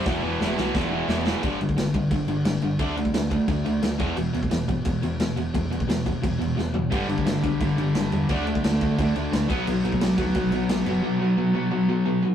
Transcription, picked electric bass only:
X:1
M:4/4
L:1/8
Q:1/4=175
K:Em
V:1 name="Picked electric bass" clef=bass
E,,, E,,, E,,, B,,, E,,,2 E,,,2 | G,,, G,,, G,,, B,,, G,,, G,,, G,,, G,,, | D,,2 D,,2 D,, D,, D,, E,,, | E,,, E,,, E,,, G,,, E,,, E,,, E,,, E,,, |
E,,,2 E,,,2 E,,, E,,, E,,, E,,, | G,,, G,,, G,,, B,,, G,,, G,,, G,,, E,, | D,,2 D,,2 D,, D,, D,, B,,, | B,,, B,,, B,,, D,, B,,, B,,, B,,, F,,, |
z8 |]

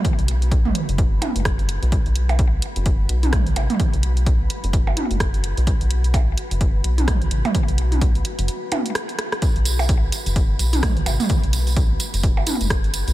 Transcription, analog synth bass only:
X:1
M:4/4
L:1/16
Q:"Swing 16ths" 1/4=128
K:Clyd
V:1 name="Analog synth bass" clef=bass
z B,,,4- B,,, z F,,,3 z F,,,4 B,,,- | B,,, B,,,4- B,,, z F,,,3 B,,,4 A,,, z | z B,,,4- B,,, z F,,,3 z F,,,4 B,,,- | B,,, B,,,4- B,,, z F,,,3 B,,,4 A,,, z |
z B,,,4- B,,, z F,,, z8 | z B,,,4- B,,, z F,,,3 B,,,4 A,,, z | z B,,,4- B,,, z F,,,3 z F,,,4 B,,, |]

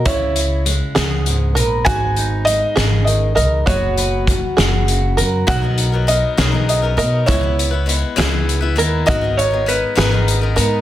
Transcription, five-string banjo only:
X:1
M:6/8
L:1/8
Q:3/8=67
K:C#dor
V:1 name="Five-string banjo"
E2 z G2 A | F2 z G2 A | F2 z G2 A | F2 z G2 A |
E2 z G2 A | F2 z G2 A |]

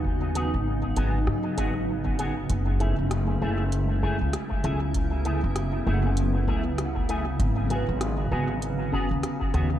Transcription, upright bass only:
X:1
M:4/4
L:1/16
Q:"Swing 16ths" 1/4=98
K:F#dor
V:1 name="Upright bass" clef=bass
D,,3 G,,,3 G,,,2 G,, z G,,,6 | F,,,3 F,,,3 F,,,4- F,,, C,, z2 C,,2- | C,,3 F,,,3 F,,,4 C,,6 | G,,,3 G,,,3 G,,,4- G,,, D,, z2 D,,2 |]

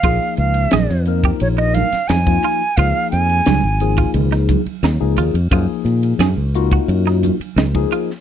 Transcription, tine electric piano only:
X:1
M:4/4
L:1/16
Q:1/4=88
K:Dblyd
V:1 name="Tine electric piano"
[F,B,EA]4 z2 [F,B,EB]4- [F,B,EB] z2 [F,B,EF]2 z | [F,B,EA]4 z2 [F,B,EA]4- [F,B,EA] z2 [F,B,EA]2 z | [F,B,EA]4 z2 [B,EF_G]4- [B,EFG] z2 [F,B,EA]2 z |]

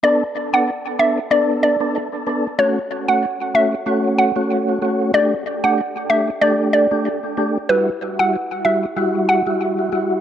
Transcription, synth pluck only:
X:1
M:4/4
L:1/16
Q:"Swing 16ths" 1/4=94
K:Bm
V:1 name="Synth pluck"
d z2 f z2 e z d z d z4 z | c z2 f z2 e z3 f z4 z | d z2 f z2 e z d z d z4 z | B z2 f z2 e z3 f z4 z |]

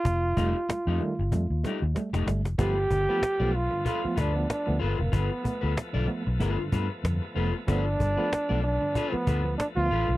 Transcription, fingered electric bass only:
X:1
M:4/4
L:1/16
Q:"Swing 16ths" 1/4=94
K:Gmix
V:1 name="Fingered electric bass" clef=bass
F,,,2 F,,, z2 F,, z G,,, F,, _E,, z E,, z F,,, G,,, F,,, | G,,,2 G,,, z2 B,,,2 z3 D,,2 z D,, G,,, F,,, | G,,, z2 D,, z B,,, z B,,, G,,, z G,, z F,, z F,,, z | G,,,2 G,,, z2 B,,,2 z3 D,,2 z D,, A,,, B,,, |]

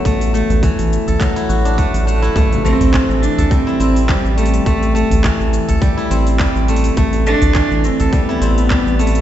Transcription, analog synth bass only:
X:1
M:4/4
L:1/16
Q:"Swing 16ths" 1/4=104
K:Ador
V:1 name="Analog synth bass" clef=bass
A,,,3 A,,, z A,,, z A,,, z2 A,,,3 A,,,3 | A,,,3 A,,, z A,,, z A,,, z2 A,,,3 A,,,3 | A,,,3 A,,, z A,,, z A,,, z2 A,,,3 A,,,3 | A,,,3 A,,, z A,,, z A,,, z2 A,,,3 A,,,3 |]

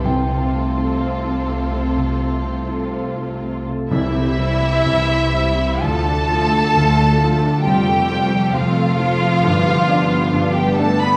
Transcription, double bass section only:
X:1
M:4/4
L:1/8
Q:1/4=64
K:C
V:1 name="Double bass section" clef=bass
C,,8 | C,,2 C,,2 D,,2 D,,2 | F,,2 F,,2 G,,2 G,,2 |]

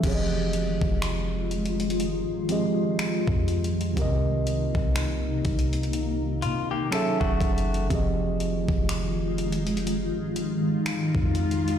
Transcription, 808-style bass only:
X:1
M:4/4
L:1/16
Q:"Swing 16ths" 1/4=61
K:Fm
V:1 name="808-style bass" clef=bass
F,,,3 F,,,6 z4 F,,3 | C,,3 C,,3 C,,4 C,2 z _G,,, G,,,2 | F,,,3 F,,,6 z4 F,,3 |]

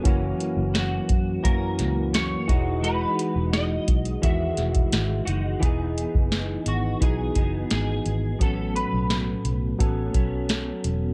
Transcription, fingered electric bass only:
X:1
M:4/4
L:1/16
Q:1/4=86
K:E
V:1 name="Fingered electric bass" clef=bass
F,,,2 z F,,,3 F,,2 F,,2 C,,4 E,,,2- | E,,,2 z E,,,3 B,,,2 E,,2 E,,,2 G,,,2 F,,,2 | E,,,3 F,,,3 G,,,2 B,,,2 F,,,2 G,,,2 G,,,2 | A,,,3 B,,,3 B,,,2 A,,,2 B,,,4 E,,,2 |]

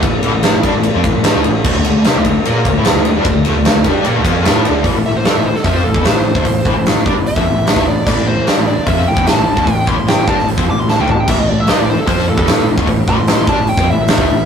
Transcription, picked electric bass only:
X:1
M:4/4
L:1/16
Q:1/4=149
K:Am
V:1 name="Picked electric bass" clef=bass
A,,,2 A,,, A,,, A,,, A,,, G,, A,,,2 F,, A,,, A,,, A,,, D,, A,,,2 | D,, D,, D,, D,, C, D,, D,, z _B,,2 D,, A,, D,, D,, D,, G,, | D,,2 D,, D,, D,, D,, G,,2 _B,, D,, F,,2 A,,2 D,,2 | A,,, A,,, A,,, A,,, G,, A,,, A,,, z F,,2 A,,, E,, A,,, A,,, A,,, D,, |
A,,,2 A,,, A,,, A,,, A,,, G,, A,,,2 F,, A,,, A,,, A,,, D,, A,,,2 | A,,, A,,, A,,, A,,, G,, A,,, A,,, z F,,2 A,,, E,, A,,, A,,, A,,, D,, | A,,,2 A,,, A,,, A,,, A,,, G,, A,,,2 F,, A,,, A,,, A,,, D,, A,,,2 | A,,, A,,, A,,, A,,, G,, A,,, A,,, z F,,2 A,,, E,, A,,, A,,, A,,, D,, |
A,,,2 A,,, A,,, A,,, A,,, G,, A,,,2 F,, A,,, A,,, A,,, D,, A,,,2 |]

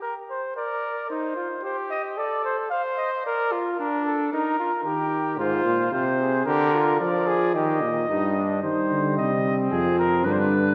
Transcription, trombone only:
X:1
M:4/4
L:1/8
Q:1/4=112
K:Eb
V:1 name="Trombone" clef=bass
z8 | z8 | z2 E,2 A,, B,, C,2 | D,2 F,2 E, B,, G,,2 |
[K:Cm] G,4 F,2 D,2 |]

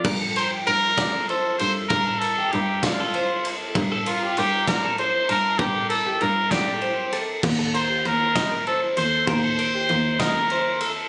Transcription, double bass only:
X:1
M:6/8
L:1/8
Q:3/8=65
K:Gm
V:1 name="Double bass" clef=bass
G,,2 G,,3 G,, | G,,2 G,,4 | G,,2 G,,3 G,, | G,,2 G,,4 |
E,,2 E,,3 E,, | E,,2 E,,4 |]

